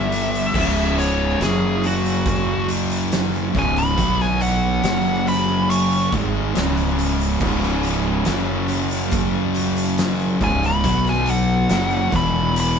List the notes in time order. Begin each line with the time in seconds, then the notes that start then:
Already playing: G1 G2 D3 G3 E5
0.12 closed hi-hat
0.34 closed hi-hat
0.54 C#1 C#2 G#2 C#3, kick, crash
0.77 closed hi-hat
0.98 C#5, closed hi-hat
1.40 F#1 F#2 C#3 F#3 G#4, snare, closed hi-hat
1.84 F#4, closed hi-hat
2.05 closed hi-hat
2.26 kick, closed hi-hat
2.69 closed hi-hat
2.90 closed hi-hat
3.12 snare, closed hi-hat
3.34 closed hi-hat
3.54 C#1 C#2 G#2 C#3, kick, closed hi-hat
3.59 G#5
3.77 B5, closed hi-hat
3.97 B1 B2 F#3 B3, kick, closed hi-hat
4.20 G#5, snare
4.41 F#5, closed hi-hat
4.83 F#1 F#2 C#3 F#3, snare, closed hi-hat
5.06 closed hi-hat
5.27 B5, closed hi-hat
5.70 C#6, closed hi-hat
5.91 closed hi-hat
6.12 G#1 G#2 D#3 G#3, kick, closed hi-hat
6.55 C#1 C#2 G#2 C#3, snare, closed hi-hat
6.77 closed hi-hat
6.99 closed hi-hat
7.20 closed hi-hat
7.40 C#1 C#2 G#2 C#3, kick, crash
7.62 snare, closed hi-hat
7.83 closed hi-hat
8.25 F#1 F#2 C#3 F#3, snare, closed hi-hat
8.68 closed hi-hat
8.90 closed hi-hat
9.11 kick, closed hi-hat
9.54 closed hi-hat
9.77 closed hi-hat
9.98 snare, closed hi-hat
10.19 closed hi-hat
10.41 C#1 C#2 G#2 C#3 G#5, kick, closed hi-hat
10.63 B5, closed hi-hat
10.84 B1 B2 F#3 B3, kick, closed hi-hat
11.06 G#5, snare
11.26 closed hi-hat
11.30 F#5
11.69 F#1 F#2 C#3 F#3, snare, closed hi-hat
11.91 closed hi-hat
12.12 E1 E2 B2 E3 B5, kick, closed hi-hat
12.56 B5, closed hi-hat